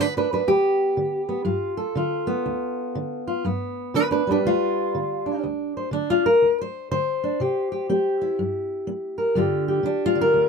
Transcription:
Already playing: D3 B3
0.01 B4
0.17 D4 B4
0.33 D4 B4
0.47 D2 G4
0.97 D3
1.29 B3
1.45 G2 F4
1.77 A4
1.95 D3 F4
2.27 B3
2.46 D2
2.95 D3
3.27 F4
3.45 G2 B3
3.94 D3 D4 B4
4.11 D4 B4
4.27 G3 D4
4.32 B4
4.45 D2 F4
4.95 D3
5.26 D4
5.44 D2
5.77 C5
5.91 D3 D4
6.10 F4
6.26 A#4
6.42 D2
6.61 C5
6.91 D3 C5
7.24 D4
7.40 C3 G4
7.72 G4
7.89 C4 G4
8.22 E4
8.39 G2
8.87 C4
9.18 A#4
9.35 G2 D3 F4 G4
9.68 G4
9.83 D3 D4
10.06 F4
10.15 D3
10.21 A#4
10.34 D2

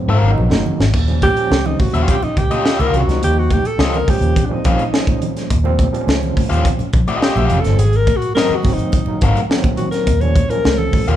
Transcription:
0.08 G#2 C4 F#4 A#4 C5 F5
0.22 G#1 D#3 F#3 A#3 C#4 A#4
0.31 D#4
0.37 A#1 F#4, muted conga
0.51 F#1, snare, muted conga, high conga
0.66 low conga
0.80 G#1, snare
0.93 D#2, kick, crash
1.08 F3 G3 A#3 C#4, closed hi-hat, muted conga
1.22 G4, kick, closed hi-hat, high conga
1.37 F3 G3 A#3 C#4, closed hi-hat
1.51 C#2, snare, high conga
1.66 D#4, low conga
1.79 F#4, kick, open hi-hat, high conga
1.93 D#2 C#4 F4 G4 F5, closed hi-hat
2.08 G4, kick, closed hi-hat, low conga
2.22 D#4, muted fingered electric bass stroke, closed hi-hat, muted conga
2.37 C#2 G4, kick, closed hi-hat
2.51 C#4 F4 G4 D#5, closed hi-hat, high conga
2.65 C#4 F4 G4 D#5, snare
2.79 C#2 C#4 F4 G4 A#4 F5, closed hi-hat, high conga
2.93 C2 F#4, closed hi-hat, low conga
3.07 C#2 F3 G3 A#3 D#4, snare, closed hi-hat
3.22 D#2 G4, closed hi-hat
3.39 F#4
3.51 G4, kick, closed hi-hat, high conga
3.65 A4, closed hi-hat
3.78 C#2 F3 G3 A#3 C#4 F4 G4 D#5, snare, high conga
3.94 A#4, closed hi-hat, low conga
4.07 F3 G3 A#3 C#4 G4, kick, open hi-hat, high conga
4.21 D#2, closed hi-hat
4.36 kick, closed hi-hat, low conga
4.45 D4
4.49 F3 G3 A#3 C4 D#4, muted fingered electric bass stroke
4.64 A#1 C#4 F4 G4 F5, kick, closed hi-hat
4.79 closed hi-hat, high conga
4.93 F3 G3 A#3 C#4, snare
5.07 kick, closed hi-hat, high conga
5.22 closed hi-hat, low conga
5.37 snare, closed hi-hat
5.50 D#2, kick, closed hi-hat
5.64 F3 G3 A#3 C4, muted conga
5.79 kick, closed hi-hat, high conga
5.92 F3 G3 A#3 C4, closed hi-hat
6.01 C#4
6.07 C#2, snare, muted conga, high conga
6.23 closed hi-hat, muted conga, low conga
6.37 kick, open hi-hat, high conga
6.50 D#2 C#4 F4 G4 F5, closed hi-hat
6.65 kick, closed hi-hat, low conga
6.79 muted fingered electric bass stroke, closed hi-hat, muted conga
6.93 A#1, kick, closed hi-hat
7.08 C#4 F4 G4 D#5, closed hi-hat, high conga
7.22 C#4 F4 G4 D#5, snare
7.36 A#1 C#4 F4 G4 F5, closed hi-hat, muted conga, high conga
7.50 F1, closed hi-hat, low conga
7.61 F3 A4, closed hi-hat
7.65 G1 G3 A#3 C#4, snare
7.78 G#1 G#4, closed hi-hat, muted conga
7.93 A#4, closed hi-hat, muted conga
8.07 kick, closed hi-hat, high conga
8.17 F#4
8.22 closed hi-hat
8.35 D#3 F#3 A#3 C4 F#4 A#4 D#5, snare, muted conga, high conga
8.49 muted fingered electric bass stroke, closed hi-hat, low conga
8.55 F#4
8.63 F#1 D#3 F#3 A#3 C4, kick, open hi-hat, high conga
8.74 D#4
8.79 closed hi-hat
8.92 kick, closed hi-hat, muted conga, low conga
9.06 D#3 F#3 A#3 D#4, muted fingered electric bass stroke, muted conga
9.21 G#1 C4 F#4 A#4 F5, kick, closed hi-hat
9.36 closed hi-hat, high conga
9.49 D#3 F#3 A#3 B3, snare
9.57 C4
9.64 kick, closed hi-hat, muted conga, high conga
9.77 F#4, closed hi-hat, low conga
9.91 A#4, snare, closed hi-hat
10.07 D#2, kick, closed hi-hat
10.21 F3 G3 A#3 C#4 C#5, closed hi-hat, muted conga
10.36 kick, closed hi-hat, high conga
10.50 F3 F#3 A#3 C#4 A#4, closed hi-hat
10.57 G3
10.65 C#2, snare, high conga
10.78 A4, low conga
10.93 kick, open hi-hat, high conga
11.08 D#2 C#4 F4 G4 A#4 F5, closed hi-hat

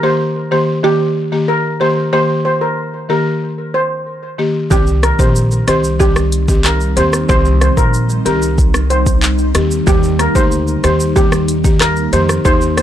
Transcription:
0.03 D#3 A#3 G4 C5
0.51 D#3 A#3 G4 C5
0.84 D#3 A#3 G4
1.32 D#3 A#3 G4
1.48 A#4
1.80 D#3 A#3 G4 C5
2.13 D#3 A#3 G4 C5
2.45 C5
2.61 A#4
3.09 D#3 A#3 G4 A#4
3.74 C5
4.38 D#3 A#3 G4
4.71 C2 D#3 G3 C4 D#4 G4, kick, shaker
4.87 shaker
5.03 A#4, cross-stick, closed hi-hat, shaker
5.19 A#1 D#3 C4 G4 C5, kick, shaker
5.36 shaker
5.51 shaker
5.67 C2 D#3 C4 G4 C5, cross-stick, closed hi-hat, shaker
5.84 shaker
6.00 D#3 C4 G4, kick, shaker
6.16 cross-stick, shaker
6.32 closed hi-hat, shaker
6.48 D#3 C4 G4, kick, shaker
6.65 A#4, cross-stick, clap, shaker
6.80 shaker
6.97 D#2 D#3 C4 G4 C5, closed hi-hat, shaker
7.13 cross-stick, shaker
7.29 C2 D#3 C4 G4 C5, kick, shaker
7.45 shaker
7.61 C5, cross-stick, closed hi-hat, shaker
7.77 A#1 A#4, kick, shaker
7.94 shaker
8.09 shaker
8.26 C2 D#3 C4 G4 A#4, closed hi-hat, shaker
8.42 shaker
8.58 kick, shaker
8.74 cross-stick, shaker
8.90 C5, closed hi-hat, shaker
9.06 kick, shaker
9.23 clap, shaker
9.38 shaker
9.55 D#2 D#3 C4 G4, cross-stick, closed hi-hat, shaker
9.71 shaker
9.87 D#2 D#3 A#3 G4, kick, shaker
10.03 shaker
10.19 A#4, cross-stick, closed hi-hat, shaker
10.35 D2 A#3 D#4 G4 C5, kick, shaker
10.52 shaker
10.67 shaker
10.84 D#2 D#3 A#3 G4 C5, cross-stick, closed hi-hat, shaker
11.00 shaker
11.16 D#3 A#3 G4, kick, shaker
11.32 cross-stick, shaker
11.48 closed hi-hat, shaker
11.64 D#3 A#3 G4, kick, shaker
11.81 A#4, cross-stick, clap, shaker
11.97 shaker
12.13 F2 D#3 A#3 G4 C5, closed hi-hat, shaker
12.29 cross-stick, shaker
12.45 D#2 A#3 D#4 G4 C5, kick, shaker
12.61 shaker
12.77 C5, cross-stick, closed hi-hat, shaker

